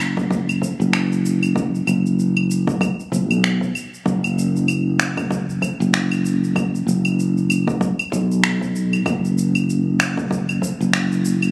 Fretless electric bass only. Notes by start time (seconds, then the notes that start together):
Already playing: F#1
0.80 F#1
1.87 F#1
3.12 F#1
3.30 B1
4.06 F#1
5.80 F#1
6.87 F#1
8.12 B1
9.06 F#1
10.81 F#1